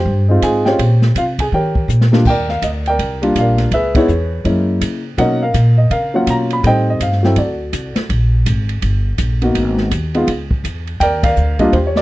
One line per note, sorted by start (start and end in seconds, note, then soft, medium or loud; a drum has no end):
0.00 0.41 G4 medium
0.00 0.41 C5 medium
0.00 0.45 G5 medium
0.05 0.41 G2 medium
0.28 0.63 G#3 medium
0.28 0.64 C4 medium
0.28 0.64 D#4 medium
0.28 0.65 F4 medium
0.42 0.78 G#2 medium
0.42 0.66 G#4 medium
0.42 0.67 G#5 medium
0.42 kick soft
0.42 hi-hat pedal medium
0.42 ride medium
0.65 0.78 G#3 medium
0.65 0.78 C4 medium
0.65 0.79 C#4 medium
0.65 0.79 F4 medium
0.65 1.13 G4 medium
0.65 1.13 C5 medium
0.65 1.14 C#5 medium
0.65 1.17 G5 medium
0.65 snare soft
0.79 1.15 A#2 medium
0.79 kick soft
0.79 ride medium
1.02 snare medium
1.15 1.51 C3 medium
1.15 1.24 F4 medium
1.15 1.23 F5 medium
1.15 kick soft
1.15 hi-hat pedal medium
1.15 ride medium
1.39 1.47 G#4 medium
1.39 1.45 G#5 medium
1.39 kick soft
1.39 ride medium
1.52 1.88 D#3 medium
1.52 2.09 G4 medium
1.52 2.09 A#4 medium
1.52 2.09 C#5 medium
1.52 2.09 G5 medium
1.52 kick soft
1.75 kick medium
1.88 2.24 A#2 medium
1.88 hi-hat pedal medium
2.01 snare medium
2.12 2.24 D#2 medium
2.12 2.24 G3 medium
2.12 2.25 A#3 medium
2.12 2.25 D4 medium
2.12 2.25 F4 medium
2.12 snare medium
2.25 2.61 D#2 medium
2.25 2.48 G5 loud
2.25 kick medium
2.25 crash medium
2.30 2.88 A#4 medium
2.30 2.88 D5 medium
2.49 2.63 F5 medium
2.49 snare soft
2.62 2.98 D2 medium
2.62 2.69 D#5 medium
2.62 kick soft
2.62 hi-hat pedal medium
2.62 ride medium
2.86 3.39 A#4 medium
2.86 3.39 D5 medium
2.86 3.21 G5 loud
2.86 ride soft
2.99 3.34 C2 medium
2.99 kick soft
2.99 ride medium
3.22 3.69 G3 medium
3.22 3.70 A#3 medium
3.22 3.70 D4 medium
3.22 3.70 F4 medium
3.22 ride soft
3.35 3.70 A#1 medium
3.35 3.71 F5 medium
3.35 kick soft
3.35 hi-hat pedal medium
3.35 ride medium
3.40 3.72 A#4 medium
3.40 3.72 D5 medium
3.58 snare soft
3.58 ride soft
3.71 4.07 C#2 medium
3.71 3.96 G#4 medium
3.71 4.42 B4 medium
3.71 3.97 E5 loud
3.71 kick soft
3.71 ride medium
3.95 4.07 G#3 medium
3.95 4.08 B3 medium
3.95 4.08 D#4 medium
3.95 4.08 E4 medium
3.95 4.43 G#4 soft
3.95 4.43 C#5 medium
3.95 kick medium
3.95 ride medium
4.08 4.44 E2 medium
4.08 hi-hat pedal soft
4.45 4.80 F#2 medium
4.45 5.00 G#3 medium
4.45 5.00 A#3 medium
4.45 5.00 C#4 medium
4.45 5.01 E4 medium
4.45 kick soft
4.45 ride medium
4.81 5.17 C#3 medium
4.81 kick soft
4.81 hi-hat pedal soft
4.81 ride medium
5.17 5.53 B2 medium
5.17 5.39 F#3 medium
5.17 5.39 A#3 medium
5.17 5.40 C#4 medium
5.17 5.40 D#4 medium
5.17 5.42 A#4 medium
5.17 5.76 D#5 medium
5.17 5.42 F#5 loud
5.17 kick soft
5.17 ride medium
5.43 5.90 A#4 medium
5.43 5.76 F5 medium
5.54 5.90 A#2 medium
5.54 kick soft
5.54 hi-hat pedal medium
5.54 ride medium
5.78 5.92 D#5 medium
5.90 6.26 C#3 medium
5.90 6.60 A#4 medium
5.90 6.13 F5 medium
5.90 kick soft
5.90 ride medium
6.14 6.61 F#3 medium
6.14 6.61 A#3 medium
6.14 6.62 C#4 medium
6.14 6.62 F4 medium
6.14 6.29 F#5 medium
6.27 6.62 B2 medium
6.27 6.35 A#5 loud
6.27 kick soft
6.27 hi-hat pedal soft
6.27 ride medium
6.50 6.64 B5 medium
6.50 ride soft
6.63 6.99 A2 medium
6.63 7.19 G3 medium
6.63 7.19 A3 medium
6.63 7.19 C4 medium
6.63 7.20 D#4 medium
6.63 7.34 C5 medium
6.63 6.88 D#5 medium
6.63 6.89 G5 loud
6.63 kick soft
6.63 ride medium
6.90 7.02 D#5 medium
7.00 7.35 G2 medium
7.00 7.25 F5 medium
7.00 kick soft
7.00 hi-hat pedal medium
7.00 ride medium
7.12 snare soft
7.23 7.35 F#3 medium
7.23 7.36 A3 medium
7.23 7.36 C4 medium
7.23 7.36 E4 medium
7.23 7.37 G5 medium
7.23 snare soft
7.36 7.72 D2 medium
7.36 8.07 F#4 soft
7.36 8.07 A4 soft
7.36 7.93 D5 medium
7.36 kick soft
7.36 ride medium
7.72 7.94 C2 medium
7.72 kick soft
7.72 hi-hat pedal medium
7.72 ride medium
7.96 muted upright bass stroke soft
7.96 snare medium
7.96 ride soft
8.09 8.45 A#1 medium
8.09 kick soft
8.09 ride medium
8.46 8.81 G#1 medium
8.46 kick soft
8.46 hi-hat pedal medium
8.46 ride medium
8.69 ride soft
8.82 9.18 G1 medium
8.82 kick soft
8.82 ride medium
9.18 9.54 A#1 medium
9.18 kick soft
9.18 hi-hat pedal medium
9.18 ride medium
9.42 9.89 A#3 medium
9.42 9.89 B3 medium
9.42 9.90 D#4 medium
9.42 9.90 F#4 medium
9.42 ride soft
9.55 9.90 G#1 medium
9.55 kick soft
9.55 ride medium
9.78 snare soft
9.91 10.27 D#2 medium
9.91 kick soft
9.91 hi-hat pedal medium
9.91 ride medium
10.14 10.27 G#3 medium
10.14 10.27 B3 medium
10.14 10.27 D#4 medium
10.14 10.28 F4 medium
10.14 ride soft
10.27 10.63 C#2 medium
10.27 kick soft
10.27 ride medium
10.51 kick medium
10.64 10.99 E2 medium
10.64 kick soft
10.64 hi-hat pedal medium
10.64 ride medium
10.87 ride soft
11.00 11.36 D#2 medium
11.00 11.24 A#4 medium
11.00 11.24 D5 medium
11.00 11.24 G5 loud
11.00 kick soft
11.00 ride medium
11.23 11.93 A#4 medium
11.23 11.93 D5 medium
11.23 11.61 F5 loud
11.23 kick medium
11.23 ride medium
11.36 11.72 D2 medium
11.36 hi-hat pedal medium
11.59 11.72 G3 medium
11.59 11.72 A#3 medium
11.59 11.72 D4 medium
11.59 11.73 F4 medium
11.59 11.72 D#5 medium
11.59 kick soft
11.59 ride soft
11.73 12.02 D#2 medium
11.73 11.97 G4 medium
11.73 11.78 C5 medium
11.73 kick soft
11.73 ride medium
11.87 11.96 C#5 medium
11.96 12.02 G4 medium
11.96 12.02 D5 loud
11.96 snare medium